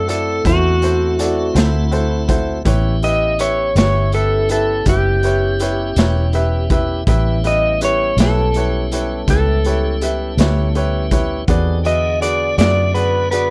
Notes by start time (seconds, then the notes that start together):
Already playing: F#2 A3 C4 E4 F#4
0.08 E4 F#4 A4 D5, closed hi-hat
0.45 E2 E4 F#4 A4 C5, kick, snare, closed hi-hat
0.82 E4 F#4 A4 C5, closed hi-hat
1.19 E4 F#4 A4 D5, closed hi-hat
1.54 D2 E4 F#4 A4 C5, snare, closed hi-hat
1.65 E4
1.91 E4 F#4 A4 C5, closed hi-hat
2.28 E4 F#4 A4 C5, kick, closed hi-hat
2.65 A1 B3 C#4 E4 G4 B4 C#5, kick, closed hi-hat
3.03 E4 G4 B4 D#5 E5, closed hi-hat
3.39 E4 G4 B4 C#5 E5, closed hi-hat
3.76 G1 E4 G4 B4 C#5 E5, snare, closed hi-hat
4.12 E4 G4 A4 B4 E5, closed hi-hat
4.49 E4 G4 A4 B4 E5, closed hi-hat
4.86 F#1 E4 G4 B4 E5, kick, closed hi-hat
5.23 E4 G4 B4 C#5, closed hi-hat
5.59 E4 G4 B4 C#5, closed hi-hat
5.96 E1 E4 G4 B4 C#5, snare, closed hi-hat
6.33 E4 G4 B4 E5, closed hi-hat
6.70 E4 G4 B4 E5, kick, closed hi-hat
7.07 A1 G3 B3 C#4 E4 G4 B4 E5, kick, closed hi-hat
7.44 E4 G4 B4 D#5 E5, closed hi-hat
7.81 E4 G4 B4 C#5, closed hi-hat
8.17 B1 E4 G4 B4 C#5, snare, closed hi-hat
8.21 A4
8.54 E4 G4 B4 C#5, closed hi-hat
8.92 E4 G4 B4 C#5, closed hi-hat
9.28 C#2 E4 G4 A4 B4 E5, kick, snare, closed hi-hat
9.65 E4 G4 B4 C#5, closed hi-hat
10.01 E4 G4 B4 E5, closed hi-hat
10.37 D2 E4 G4 B4 C#5, snare, closed hi-hat
10.75 E4 G4 B4 C#5, closed hi-hat
11.11 E4 G4 B4 C#5, kick, closed hi-hat
11.48 E2 C4 D#4 F#4 G4 G#4 A4 B4 D5, kick, closed hi-hat
11.84 D3 B3 F#4 G#4 B4 D#5 E5, closed hi-hat
12.21 F#4 G#4 B4 D5, closed hi-hat
12.58 F#2 F#4 G#4 B4 D5 E5, snare, closed hi-hat
12.94 F#4 G#4 B4 D5, closed hi-hat
13.31 F#4 G#4 B4 D5, closed hi-hat